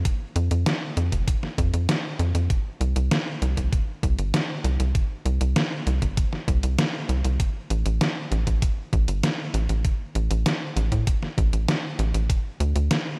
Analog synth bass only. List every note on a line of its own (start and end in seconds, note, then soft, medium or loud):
0.36 0.50 F2 medium
0.51 0.65 F2 medium
0.97 1.11 F2 medium
1.12 1.26 F1 medium
1.58 1.72 F2 loud
1.74 1.88 F2 medium
2.19 2.33 F2 medium
2.35 2.49 F2 medium
2.81 2.95 C2 medium
2.96 3.10 C2 medium
3.42 3.56 C2 medium
3.57 3.71 C2 medium
4.03 4.17 C2 medium
4.19 4.33 G1 medium
4.64 4.78 C2 medium
4.80 4.94 C2 medium
5.25 5.40 C2 medium
5.41 5.55 C2 medium
5.87 6.01 C2 medium
6.02 6.16 G1 medium
6.48 6.62 C2 loud
6.63 6.77 C2 medium
7.09 7.23 C2 medium
7.24 7.39 C2 medium
7.70 7.84 A1 medium
7.86 8.00 A1 medium
8.32 8.46 A1 medium
8.47 8.61 A1 medium
8.93 9.07 A1 loud
9.08 9.22 G1 medium
9.54 9.68 A1 medium
9.69 9.83 A1 medium
10.15 10.29 A1 medium
10.31 10.45 A1 medium
10.76 10.91 A1 medium
10.92 11.06 A2 medium
11.38 11.52 A1 loud
11.53 11.67 A1 medium
11.99 12.13 A1 loud
12.14 12.28 A1 medium
12.60 12.74 D2 medium
12.76 12.90 D2 medium